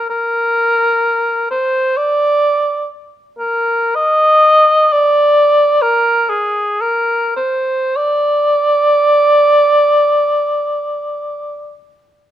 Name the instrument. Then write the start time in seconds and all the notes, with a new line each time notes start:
cor anglais
0.10 A#4
1.51 C5
1.97 D5
3.39 A#4
3.95 D#5
4.92 D5
5.82 A#4
6.29 G#4
6.81 A#4
7.36 C5
7.96 D5